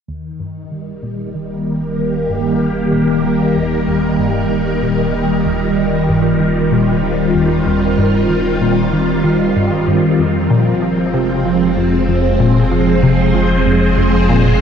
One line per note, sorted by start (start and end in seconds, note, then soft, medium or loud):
0.08 10.16 D#1 medium
0.08 0.38 D#2 medium
0.08 10.19 D#3 medium
0.40 0.63 G2 medium
0.63 10.19 G3 medium
0.71 0.95 D#3 medium
1.03 1.33 A#2 medium
1.35 1.58 D#3 medium
1.35 6.92 A#3 medium
1.35 11.51 A#4 medium
1.58 5.51 G4 medium
1.66 1.90 D#2 medium
1.98 2.28 D#2 medium
2.30 2.53 G2 medium
2.61 2.85 D#3 medium
2.93 3.23 A#2 medium
3.24 3.48 D#3 medium
3.56 3.79 D#2 medium
3.87 4.17 D#2 medium
4.19 4.43 G2 medium
4.51 4.74 D#3 medium
4.82 5.12 A#2 medium
5.14 5.37 D#3 medium
5.32 12.57 F4 medium
5.45 5.69 D#2 medium
5.77 6.07 D#2 medium
6.09 6.32 G2 medium
6.40 6.64 D#3 medium
6.72 7.02 A#2 medium
6.72 14.61 C4 medium
7.03 7.27 D#3 medium
7.35 7.58 D#2 medium
7.66 7.96 D#2 medium
7.98 8.21 G2 medium
8.29 8.53 D#3 medium
8.61 8.91 A#2 medium
8.93 9.16 D#3 medium
9.24 9.48 D#3 medium
9.56 9.70 G2 medium
9.87 10.02 G2 medium
10.19 14.61 F1 medium
10.19 10.49 F2 medium
10.19 14.61 F3 medium
10.50 10.74 A#2 medium
10.82 11.06 F3 medium
10.82 14.61 G#3 medium
11.14 11.44 C3 medium
11.45 11.69 F3 medium
11.69 14.61 C5 medium
11.77 12.00 F2 medium
12.08 12.38 F2 medium
12.23 14.61 G#4 medium
12.40 12.63 A#2 medium
12.72 12.95 F3 medium
13.03 13.33 C3 medium
13.35 13.58 F3 medium
13.66 13.90 F2 medium
13.98 14.28 F2 medium
14.29 14.53 A#2 medium